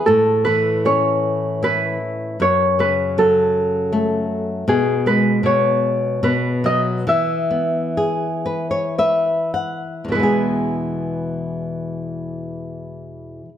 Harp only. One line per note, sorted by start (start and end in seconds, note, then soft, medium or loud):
0.06 2.26 A4 medium
0.45 1.63 B4 medium
0.86 2.41 C#5 medium
1.64 2.80 B4 medium
2.42 4.33 C#5 medium
2.80 2.90 B4 medium
3.18 4.75 A4 medium
4.69 6.96 G#4 medium
5.07 6.24 B4 medium
5.46 7.37 C#5 medium
6.24 8.29 B4 medium
6.66 6.77 D#5 medium
7.09 9.51 E5 medium
10.12 13.48 B4 medium